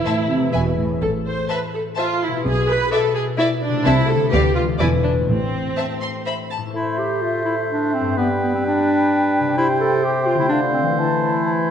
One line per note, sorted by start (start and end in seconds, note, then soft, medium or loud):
0.00 0.35 E3 soft
0.00 0.49 C4 soft
0.00 0.45 E4 soft
0.00 0.77 E4 medium
0.00 0.53 A4 soft
0.00 0.54 C5 soft
0.05 0.28 A2 soft
0.05 0.14 C5 soft
0.05 0.13 E5 soft
0.05 0.13 A5 soft
0.30 0.54 C3 soft
0.37 0.95 E3 soft
0.41 0.98 B3 soft
0.46 0.92 E4 soft
0.51 0.92 E1 soft
0.51 0.77 B2 soft
0.51 1.02 G#4 soft
0.51 0.61 B4 soft
0.51 0.61 E5 soft
0.51 0.62 G#5 soft
0.79 1.01 A2 soft
0.84 2.38 A2 soft
0.89 2.41 C4 soft
0.94 2.35 E4 soft
0.98 1.40 A1 soft
0.98 1.40 A2 soft
0.98 2.45 A4 soft
0.98 1.10 A4 medium
1.26 1.49 C5 medium
1.49 1.58 B4 medium
1.49 1.57 C5 soft
1.49 1.57 E5 soft
1.49 1.57 A5 soft
1.74 1.82 A4 medium
1.96 2.21 F4 medium
1.96 2.05 C5 soft
1.96 2.05 E5 soft
1.96 2.04 A5 soft
2.22 2.46 E4 medium
2.27 3.79 B2 soft
2.32 3.81 B3 soft
2.36 3.76 E4 soft
2.40 3.85 D5 soft
2.45 2.83 B1 medium
2.45 2.83 B2 medium
2.45 2.68 G#4 medium
2.69 2.92 B4 medium
2.92 3.15 A4 medium
2.92 3.00 D5 soft
2.92 3.00 E5 soft
2.92 3.01 E5 soft
3.15 3.23 G#4 medium
3.37 3.45 E4 medium
3.37 3.48 D5 soft
3.37 3.47 E5 soft
3.37 3.48 E5 soft
3.62 3.85 D4 medium
3.69 4.26 C3 soft
3.73 4.28 A3 soft
3.77 4.30 E4 soft
3.82 4.23 C3 medium
3.82 4.08 E4 medium
3.82 4.33 C5 soft
3.82 3.93 C5 soft
3.82 3.94 E5 soft
3.82 3.93 A5 soft
3.86 4.23 C2 medium
4.07 4.32 A4 medium
4.15 4.73 D3 soft
4.19 5.24 B3 soft
4.24 4.71 D4 soft
4.29 4.70 D2 medium
4.29 4.55 G4 medium
4.29 4.75 B4 soft
4.29 4.40 B4 soft
4.33 4.70 D2 medium
4.33 4.41 D5 soft
4.33 4.41 F5 soft
4.55 4.63 F4 medium
4.63 5.22 E3 soft
4.67 5.24 G#3 soft
4.72 5.27 D4 soft
4.76 5.18 E2 soft
4.76 4.88 E4 medium
4.76 5.29 B4 soft
4.76 4.87 B4 soft
4.76 4.86 D5 soft
4.80 5.19 E1 medium
4.80 4.88 G#5 soft
5.04 5.12 D4 medium
5.11 6.56 A2 soft
5.16 6.60 A3 soft
5.16 8.14 C4 soft
5.24 6.69 C5 soft
5.29 5.68 A1 soft
5.29 5.68 A2 soft
5.29 6.24 C4 medium
5.77 5.85 C5 soft
5.77 5.85 E5 soft
5.77 5.85 A5 soft
6.02 6.10 C6 soft
6.26 6.34 C5 soft
6.26 6.34 E5 soft
6.26 6.35 B5 soft
6.51 6.59 A5 soft
6.57 8.10 A2 soft
6.62 8.12 A3 soft
6.66 8.14 E4 soft
6.70 8.19 A3 soft
6.70 7.00 E4 medium
6.70 8.16 C5 soft
6.75 8.18 C5 soft
6.75 8.13 E5 soft
6.99 7.24 G4 medium
7.22 7.45 F4 medium
7.45 7.56 E4 medium
7.71 7.96 D4 medium
7.94 8.17 C4 medium
8.00 9.50 G2 soft
8.04 9.53 B3 soft
8.04 9.48 G4 soft
8.13 9.57 G3 soft
8.13 9.57 B4 soft
8.13 9.57 D5 soft
8.13 10.53 G5 soft
8.18 8.28 B3 medium
8.43 8.53 B3 medium
8.55 8.65 C4 medium
8.67 9.57 D4 medium
9.40 10.45 C3 soft
9.44 11.71 C4 soft
9.49 10.49 G4 soft
9.53 10.47 C5 soft
9.57 10.53 C3 medium
9.57 9.68 E4 medium
9.57 11.71 C5 medium
9.80 10.06 A4 medium
10.04 10.28 G4 medium
10.26 10.38 F4 medium
10.34 10.93 D3 soft
10.39 10.86 A3 soft
10.39 10.48 E4 medium
10.44 10.97 F4 soft
10.48 10.99 D3 soft
10.48 10.60 D4 medium
10.48 10.94 C5 soft
10.48 11.00 F5 soft
10.74 10.85 C4 medium
10.82 11.71 E3 soft
10.87 11.71 A3 soft
10.91 11.71 E4 soft
10.96 11.71 E3 soft
10.96 11.71 E4 medium
10.96 11.71 C5 soft
10.96 11.42 A5 soft
11.46 11.52 A5 soft